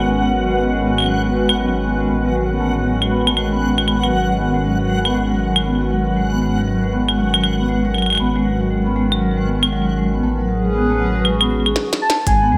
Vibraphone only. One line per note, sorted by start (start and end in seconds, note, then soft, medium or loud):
0.06 0.17 G#3 medium
0.22 0.29 B3 medium
0.32 0.43 F#3 medium
0.48 0.57 G#3 medium
0.57 0.68 B3 medium
0.73 0.80 G#3 medium
0.83 0.93 B3 medium
0.98 1.05 F#3 medium
1.08 1.23 G#3 medium
1.24 1.30 B3 medium
1.33 1.44 G#3 medium
1.49 1.56 B3 medium
1.59 1.70 F#3 medium
1.75 1.84 G#3 medium
1.84 1.95 B3 medium
2.00 2.07 G#3 medium
2.10 2.21 B3 medium
2.26 2.32 F#3 medium
2.35 2.50 G#3 medium
2.51 2.58 B3 medium
2.61 2.71 A3 medium
2.76 2.83 B3 medium
2.86 2.97 F#3 medium
3.02 3.11 G#3 medium
3.11 3.22 B3 medium
3.27 3.34 A3 medium
3.37 3.52 G#3 medium
3.53 3.59 B3 medium
3.62 3.73 G#3 medium
3.78 3.85 G#3 medium
3.88 3.98 B3 medium
4.03 4.07 F#3 medium
4.13 4.24 F#3 medium
4.29 4.38 G#3 medium
4.39 4.49 B3 medium
4.54 4.61 G#3 medium
4.64 4.75 F#3 medium
4.80 4.86 F#3 medium
4.89 5.04 G#3 medium
5.05 5.12 B3 medium
5.15 5.26 G#3 medium
5.31 5.37 F#3 medium
5.40 5.51 F#3 medium
5.56 5.65 G#3 medium
5.66 5.76 B3 medium
5.81 5.88 G#3 medium
5.91 6.02 F#3 medium
6.07 6.13 F#3 medium
6.17 6.32 G#3 medium
6.32 6.39 B3 medium
6.42 6.53 G#3 medium
6.58 6.64 F#3 medium
6.67 6.78 F#3 medium
6.83 6.92 G#3 medium
6.93 7.04 B3 medium
7.09 7.15 G#3 medium
7.18 7.29 F#3 medium
7.34 7.41 F#3 medium
7.44 7.59 G#3 medium
7.59 7.66 B3 medium
7.69 7.80 G#3 medium
7.85 7.91 F#3 medium
7.95 8.05 F#3 medium
8.10 8.19 G#3 medium
8.20 8.31 B3 medium
8.36 8.42 G#3 medium
8.45 8.56 F#3 medium
8.61 8.68 F#3 medium
8.71 8.86 G#3 medium
8.86 8.93 B3 medium
8.96 9.07 G#3 medium
9.12 9.19 F#3 medium
9.22 9.32 F#3 medium
9.37 9.47 G#3 medium
9.47 9.58 B3 medium
9.63 9.69 G#3 loud
9.72 9.83 F#3 medium
9.88 9.95 F#3 medium
9.98 10.13 G#3 medium
10.14 10.20 B3 medium
10.23 10.34 A3 loud
10.39 10.46 F#3 medium
10.49 10.60 F#3 medium
10.65 10.74 G#3 medium
10.74 10.85 B3 medium
10.90 10.97 A3 medium
11.00 11.10 F#3 medium
11.15 11.22 F#3 medium
11.25 11.40 G#3 medium
11.41 11.47 B3 medium
11.51 11.61 G#3 medium
11.66 11.73 G#4 medium
12.27 12.42 G#3 medium
12.43 12.49 B3 medium
12.52 12.58 G#3 medium